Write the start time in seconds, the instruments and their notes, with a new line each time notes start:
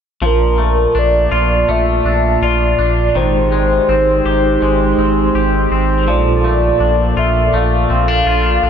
0.21 analog synth bass A#1, analog synth pad A#2 F4 D5 A5, clean electric guitar F3
0.26 soft synth lead A#4
0.58 clean electric guitar A3
0.95 analog synth bass A#1, clean electric guitar D4, soft synth lead D5
1.31 analog synth bass A#1, clean electric guitar F4
1.69 analog synth bass A#1, clean electric guitar A3, soft synth lead E5
2.05 analog synth bass A#1, clean electric guitar D4
2.42 analog synth bass A#1, clean electric guitar F4, soft synth lead D5
2.79 analog synth bass A#1, clean electric guitar D4
3.15 analog synth bass G#1, clean electric guitar D#3, analog synth pad G#3 D#4 G4 C5, soft synth lead C5
3.52 clean electric guitar G#3
3.89 analog synth bass G#1, clean electric guitar C4
4.25 analog synth bass G#1, clean electric guitar G4
4.62 analog synth bass G#1, clean electric guitar G#3
4.98 analog synth bass G#1, clean electric guitar C4
5.35 analog synth bass G#1, clean electric guitar G4
5.71 analog synth bass G#1, clean electric guitar C4
6.08 analog synth bass A#1, analog synth pad A#2 F4 A4 D5, clean electric guitar F3, soft synth lead D5
6.44 clean electric guitar A3
6.80 analog synth bass A#1, clean electric guitar D4
7.17 analog synth bass A#1, clean electric guitar F4, soft synth lead E5
7.53 analog synth bass A#1, clean electric guitar A3, soft synth lead F5
7.90 analog synth bass A#1, clean electric guitar C4
8.08 clean electric guitar D4
8.26 analog synth bass A#1, clean electric guitar F4
8.63 analog synth bass A#1, clean electric guitar D4